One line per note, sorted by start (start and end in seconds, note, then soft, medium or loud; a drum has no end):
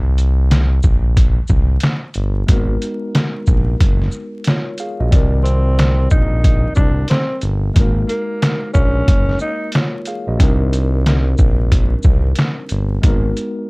0.00 0.80 C2 loud
0.18 closed hi-hat soft
0.18 shaker soft
0.51 snare loud
0.51 closed hi-hat medium
0.83 1.40 A#1 loud
0.83 kick loud
0.83 shaker soft
1.17 kick loud
1.17 closed hi-hat medium
1.48 1.78 C2 medium
1.48 kick loud
1.48 shaker soft
1.80 snare loud
1.80 closed hi-hat medium
2.14 2.43 G1 loud
2.14 closed hi-hat soft
2.14 shaker soft
2.47 2.77 G#1 loud
2.47 5.07 G#3 medium
2.47 2.56 A#3 medium
2.47 5.09 D#4 medium
2.47 kick loud
2.47 closed hi-hat loud
2.52 5.11 B3 medium
2.52 4.44 F#4 medium
2.52 4.45 A#4 medium
2.82 closed hi-hat soft
2.82 shaker soft
3.15 snare loud
3.15 closed hi-hat medium
3.46 3.75 A#1 loud
3.46 kick loud
3.46 shaker medium
3.80 4.08 F#1 loud
3.80 kick loud
3.80 closed hi-hat medium
4.02 snare soft
4.11 shaker soft
4.44 4.78 C#5 medium
4.44 snare loud
4.44 closed hi-hat medium
4.49 4.79 F4 medium
4.78 4.99 G#4 medium
4.78 4.99 F5 medium
4.78 closed hi-hat soft
4.78 shaker soft
5.00 5.10 A#1 medium
5.00 5.32 F#4 medium
5.00 5.31 D#5 medium
5.10 6.07 C2 loud
5.10 7.71 G3 medium
5.10 7.71 C4 medium
5.10 7.72 D5 medium
5.10 kick loud
5.10 closed hi-hat loud
5.14 7.73 D#3 medium
5.14 7.74 A#4 medium
5.43 6.06 C4 medium
5.43 closed hi-hat medium
5.43 shaker soft
5.79 snare loud
5.79 closed hi-hat medium
6.10 6.67 A#1 loud
6.10 6.73 D#4 medium
6.10 kick loud
6.10 shaker medium
6.44 kick loud
6.44 closed hi-hat medium
6.75 7.05 C2 medium
6.75 7.06 D4 medium
6.75 kick loud
6.75 shaker soft
7.08 7.40 C4 medium
7.08 snare loud
7.08 closed hi-hat medium
7.41 7.71 G1 loud
7.41 closed hi-hat soft
7.41 shaker soft
7.74 8.04 G#1 loud
7.74 10.35 G#3 medium
7.74 7.81 A#3 medium
7.74 10.36 D#4 medium
7.74 kick loud
7.74 closed hi-hat loud
7.79 10.39 A#3 medium
7.79 9.71 F#4 medium
7.79 9.72 A#4 medium
8.08 8.70 A#3 medium
8.08 closed hi-hat medium
8.08 shaker soft
8.42 snare loud
8.42 closed hi-hat medium
8.74 9.03 A#1 loud
8.74 9.36 C#4 medium
8.74 kick loud
8.74 shaker medium
9.08 9.36 F#1 loud
9.08 kick loud
9.08 closed hi-hat medium
9.29 snare soft
9.39 9.70 D#4 medium
9.39 shaker soft
9.72 10.06 F4 medium
9.72 10.06 C#5 medium
9.72 snare loud
9.72 closed hi-hat medium
10.05 10.27 G#4 medium
10.05 10.26 F5 medium
10.05 closed hi-hat soft
10.05 shaker soft
10.27 10.38 A#1 medium
10.27 10.59 F#4 medium
10.27 10.59 D#5 medium
10.37 11.35 C2 loud
10.37 12.98 G3 medium
10.37 12.99 C4 medium
10.37 13.00 D4 medium
10.37 kick loud
10.37 closed hi-hat loud
10.42 13.00 D#4 medium
10.42 13.01 A#4 medium
10.73 closed hi-hat soft
10.73 shaker medium
11.06 snare loud
11.06 closed hi-hat medium
11.38 11.95 A#1 loud
11.38 kick loud
11.38 shaker soft
11.72 kick loud
11.72 closed hi-hat medium
12.03 12.32 C2 medium
12.03 kick loud
12.03 shaker soft
12.36 snare loud
12.36 closed hi-hat medium
12.69 12.98 G1 loud
12.69 closed hi-hat soft
12.69 shaker soft
13.02 13.31 G#1 loud
13.02 13.70 G#3 medium
13.02 13.11 A#3 medium
13.02 13.70 D#4 medium
13.02 kick loud
13.02 closed hi-hat loud
13.06 13.70 B3 medium
13.06 13.70 F#4 medium
13.06 13.70 A#4 medium
13.37 closed hi-hat medium
13.37 shaker soft